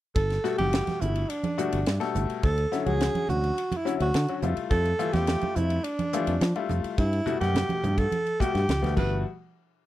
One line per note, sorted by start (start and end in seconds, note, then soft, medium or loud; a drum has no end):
0.16 0.37 G1 medium
0.16 0.56 A4 medium
0.16 kick medium
0.16 ride medium
0.30 snare soft
0.30 ride medium
0.44 0.54 B2 medium
0.44 0.54 G3 medium
0.44 0.54 A3 medium
0.44 0.54 F#4 medium
0.44 snare soft
0.44 hi-hat pedal medium
0.58 0.81 F#1 medium
0.58 1.24 B2 medium
0.58 1.24 G3 medium
0.58 1.24 A3 medium
0.58 1.03 G4 medium
0.58 1.25 F#5 medium
0.58 ride medium
0.58 high conga medium
0.73 snare medium
0.73 ride medium
0.87 muted fingered electric bass stroke soft
0.87 snare soft
0.87 ride medium
0.87 high conga medium
1.01 1.23 G1 medium
1.01 1.31 E4 medium
1.01 hi-hat pedal medium
1.01 low conga medium
1.15 ride medium
1.30 2.15 D4 medium
1.30 ride medium
1.43 ride soft
1.43 high conga medium
1.58 1.77 B2 medium
1.58 1.77 G3 medium
1.58 1.77 A3 medium
1.58 1.77 F#4 medium
1.58 hi-hat pedal medium
1.72 1.84 G1 medium
1.72 ride medium
1.86 1.98 G2 medium
1.86 1.93 A3 soft
1.86 1.94 F#4 soft
1.86 snare medium
1.86 ride medium
2.00 2.43 B2 medium
2.00 2.43 G3 medium
2.00 2.43 A3 medium
2.00 2.43 A4 medium
2.00 snare soft
2.00 ride medium
2.15 2.26 G1 medium
2.15 hi-hat pedal medium
2.15 low conga medium
2.30 ride medium
2.43 2.65 D2 medium
2.43 2.78 A4 medium
2.43 kick medium
2.43 ride medium
2.58 ride medium
2.72 2.81 D3 medium
2.72 2.81 F#3 medium
2.72 2.81 C#4 medium
2.72 2.82 E4 medium
2.72 snare soft
2.72 hi-hat pedal medium
2.78 2.88 A4 medium
2.86 3.08 C#2 medium
2.86 3.52 D3 medium
2.86 3.52 F#3 medium
2.86 3.52 C#4 medium
2.86 3.52 F#4 medium
2.86 3.29 G#4 medium
2.86 ride medium
2.86 high conga medium
3.00 snare medium
3.00 ride medium
3.15 muted fingered electric bass stroke soft
3.15 ride medium
3.15 high conga medium
3.29 3.50 D2 medium
3.29 3.78 F#4 medium
3.29 hi-hat pedal medium
3.29 low conga medium
3.44 ride medium
3.58 ride medium
3.72 ride medium
3.72 high conga medium
3.77 3.95 E4 medium
3.85 4.04 D3 medium
3.85 4.04 F#3 medium
3.85 4.05 C#4 medium
3.85 4.04 E4 medium
3.85 hi-hat pedal medium
4.00 4.11 D2 medium
4.00 4.40 F#4 medium
4.00 ride medium
4.14 4.25 D3 medium
4.14 4.21 C#4 soft
4.14 4.21 F#4 soft
4.14 snare medium
4.14 ride medium
4.28 4.43 D3 medium
4.28 4.43 F#3 medium
4.28 4.43 C#4 medium
4.28 4.43 F#4 medium
4.28 ride soft
4.42 4.53 F2 medium
4.42 4.88 G3 medium
4.42 4.88 A3 medium
4.42 4.88 E4 medium
4.42 4.88 F4 medium
4.42 hi-hat pedal medium
4.42 low conga medium
4.57 muted fingered electric bass stroke soft
4.57 ride medium
4.70 4.92 F2 medium
4.70 5.14 A4 medium
4.70 kick medium
4.70 ride medium
4.85 ride medium
4.99 5.09 E3 medium
4.99 5.09 G3 medium
4.99 5.09 A3 medium
4.99 5.09 F4 medium
4.99 hi-hat pedal medium
5.13 5.35 E2 medium
5.13 5.79 G3 medium
5.13 5.79 A3 medium
5.13 5.79 E4 medium
5.13 5.79 F4 medium
5.13 5.57 G4 medium
5.13 snare soft
5.13 ride medium
5.13 high conga medium
5.27 snare medium
5.27 ride medium
5.41 muted fingered electric bass stroke soft
5.41 ride medium
5.41 high conga medium
5.56 5.78 F2 medium
5.56 5.86 E4 medium
5.56 hi-hat pedal medium
5.56 low conga medium
5.70 ride medium
5.84 6.69 D4 medium
5.84 ride medium
5.99 ride medium
5.99 high conga medium
6.13 6.32 E3 medium
6.13 6.32 G3 medium
6.13 6.32 A3 medium
6.13 6.32 F4 medium
6.13 hi-hat pedal medium
6.27 6.38 F2 medium
6.27 ride medium
6.41 6.52 F3 medium
6.41 6.48 A3 soft
6.41 6.49 F4 soft
6.41 snare medium
6.41 ride medium
6.55 6.98 G3 medium
6.55 6.98 A3 medium
6.55 6.98 E4 medium
6.55 6.98 F4 medium
6.55 ride medium
6.69 6.80 F2 medium
6.69 hi-hat pedal medium
6.69 low conga medium
6.84 muted fingered electric bass stroke soft
6.84 ride medium
6.97 7.20 G2 medium
6.97 7.37 E4 medium
6.97 kick loud
6.97 ride medium
7.13 ride medium
7.26 7.36 B2 medium
7.26 7.36 G3 medium
7.26 7.36 A3 medium
7.26 7.36 F#4 medium
7.26 hi-hat pedal medium
7.26 low conga medium
7.40 7.62 F#2 medium
7.40 8.06 B2 medium
7.40 8.06 G3 medium
7.40 8.06 A3 medium
7.40 8.00 G4 medium
7.40 8.06 F#5 medium
7.40 snare soft
7.40 ride medium
7.55 snare medium
7.55 ride medium
7.55 low conga medium
7.69 muted fingered electric bass stroke soft
7.69 ride medium
7.69 high conga medium
7.83 8.05 G2 medium
7.83 hi-hat pedal medium
7.83 low conga medium
7.98 8.42 A4 medium
7.98 kick medium
7.98 ride medium
8.12 ride medium
8.12 high conga medium
8.26 ride soft
8.40 8.59 B2 medium
8.40 8.59 G3 medium
8.40 8.59 A3 medium
8.40 8.59 F#4 medium
8.40 8.96 G4 medium
8.40 kick medium
8.40 hi-hat pedal medium
8.55 8.65 G2 medium
8.55 snare soft
8.55 ride medium
8.68 8.82 C#2 medium
8.68 8.75 A3 soft
8.68 8.75 F#4 soft
8.68 snare medium
8.68 ride medium
8.68 high conga soft
8.82 8.96 D2 medium
8.82 8.95 B2 medium
8.82 8.95 G3 medium
8.82 8.95 A3 medium
8.82 8.97 B3 medium
8.82 snare soft
8.82 ride soft
8.82 high conga medium
8.96 9.23 G1 medium
8.96 9.23 B2 medium
8.96 9.23 G3 medium
8.96 9.23 A3 medium
8.96 9.23 F#4 medium
8.96 9.23 B4 medium
8.96 kick medium
8.96 crash medium
8.96 high conga medium